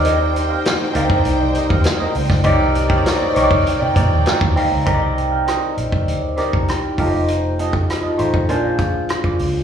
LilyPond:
<<
  \new Staff \with { instrumentName = "String section" } { \time 4/4 \key c \minor \tempo 4 = 99 <ees' c'' g''>1 | <ees' d'' g''>1 | r1 | r1 | }
  \new Staff \with { instrumentName = "Clean electric guitar" } { \time 4/4 \key c \minor <c' g' bes' ees''>16 r8 <c' g' bes' f''>16 r8 <c' g' bes' f''>16 r8. <c' g' bes' ees''>16 <c' g' bes' f''>16 r16 <c' g' bes' ees''>16 r8 | <bes ees' g' d''>16 r8 <bes ees' g' d''>16 r8 <bes ees' g' ees''>16 r8 <bes ees' g' d''>16 r8 <bes ees' g' d''>16 r16 <bes ees' g' d''>16 r16 | <c' g' bes' ees''>16 r8 <c' g' bes' f''>16 <c' g' bes' ees''>8 r4 <c' g' bes' ees''>16 r8. <c' f' a' ees''>16 r16 | r8 <c' f' a' ees''>16 r8 <c' f' a' ees''>16 r8 <bes f' aes' d''>8 r8. <bes f' aes' d''>16 r8 | }
  \new Staff \with { instrumentName = "Tine electric piano" } { \time 4/4 \key c \minor <c' ees' g' bes' d''>4~ <c' ees' g' bes' d''>16 r16 <c' ees' g' bes' d''>4.~ <c' ees' g' bes' d''>16 r8. | <c' ees' g' bes' d''>8. <c' ees' g' bes' des'' d''>8. <c' ees' g' bes' des'' d''>4 <c' ees' g' bes' d''>4 <c' ees' g' bes' f''>8 | <c' ees' g' bes' c'' d''>4.~ <c' ees' g' bes' c'' d''>16 r8. <c' ees' g' bes' d''>4 <a ees' f' g' bes' c''>8~ | <a ees' f' g' bes' c''>4~ <a ees' f' g' bes' c''>16 r16 <a ees' f' g' c''>8 <bes d' f' aes' c''>4.~ <bes d' f' aes' c''>16 r16 | }
  \new Staff \with { instrumentName = "Fingered electric bass" } { \clef bass \time 4/4 \key c \minor ees,4 r8 d,8 c,8 r16 ees,16 r8 des,8 | c,4 r8 c,8 r16 c16 bes,16 ees,16 r16 ees,16 d,16 des,16 | c,4 r8 bes,,8 d,8 r16 c,16 r8 f,,8~ | f,,4 r8 a,,8 bes,,4 r8 des,8 | }
  \new DrumStaff \with { instrumentName = "Drums" } \drummode { \time 4/4 hh8 hh8 <hh sn>8 hh16 bd16 hh8 hh16 bd16 <hh sn>8 hho16 <bd sn>16 | <hh bd>8 hh16 bd16 <hh sn>8 hh16 bd16 hh8 <hh bd>8 <hh sn>16 bd16 hho8 | <hh bd>8 hh8 <hh ss>8 hh16 bd16 hh8 <hh ss>16 bd16 <hh ss>8 <hho bd>8 | hh8 hh16 bd16 <hh ss>8 hh16 bd16 hh8 <hh bd ss>8 <hh ss>16 bd16 hho8 | }
>>